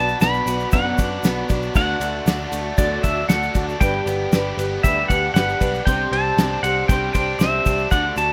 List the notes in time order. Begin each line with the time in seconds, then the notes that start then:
Already playing: B1 B2 B3 D4 F#4 D5 A5 B5
0.08 shaker
0.21 B1 B3 D4 F#4 D5 B5, snare, ride, shaker
0.34 shaker
0.46 B1 B3 D4 F#4 D5, ride, shaker
0.60 shaker
0.72 F#2 B2 F#3 B3 D4 F#4 D5 F#5, kick, ride, shaker
0.98 F#2 B3 D4 F#4 D5, kick, ride, shaker
1.23 B1 B3 D4 F#4 D5, snare, ride, shaker
1.49 B1 B3 D4 F#4 D5, kick, ride, shaker
1.63 shaker
1.75 D2 D3 A3 D4 F#4 D5 F#5 A5, kick, crash, shaker
2.00 D2 A3 D4 F#4 D5, ride, shaker
2.26 D2 A3 D4 F#4 D5, snare, ride, shaker
2.52 D2 A3 D4 F#4 D5, ride, shaker
2.77 D2 D3 F#3 A3 D4 F#4 D5, kick, ride, shaker
3.03 D2 D4 F#4 D5 E5, kick, ride, shaker
3.29 D2 A3 D4 F#4 D5 F#5, snare, ride, shaker
3.43 shaker
3.54 D2 D4 F#4 D5, kick, ride, shaker
3.69 shaker
3.81 G1 G2 G3 D4 G4 B4 G5 B5, kick, ride, shaker
4.06 G1 B3 D4 G4 B4, ride, shaker
4.32 G1 G3 D4 G4 B4, snare, ride, shaker
4.57 G1 B3 D4 G4 B4, ride, shaker
4.83 D2 G3 D4 G4 B4 E5, kick, ride, shaker
5.08 D2 G4 B4 F#5, kick, ride, shaker
5.13 D4
5.34 G1 G3 B3 D4 G4 B4 F#5, snare, ride, shaker
5.49 shaker
5.61 B1 D4 G4 B4, kick, ride, shaker
5.75 shaker
5.85 C2 C3 C4 D4 G4 C5 G5 C6, kick, ride, shaker
6.12 C2 C4 D4 G4 C5 A5, ride
6.37 C2 C4 D4 G4 C5, snare, ride, shaker
6.63 C2 C4 D4 G4 C5 F#5, ride, shaker
6.88 C2 G3 C4 D4 G4 C5 G5, kick, ride, shaker
7.13 C2 D4 G4 C5 G5, kick, ride, shaker
7.39 C2 C4 D4 G4 E5, snare, ride, shaker
7.43 C5
7.66 C2 D4 G4 C5, kick, ride, shaker
7.78 shaker
7.91 D2 D3 A3 D4 F#4 D5 F#5 A5, kick, ride, shaker
8.16 D2 A3 D4 F#4 D5 A5, ride, shaker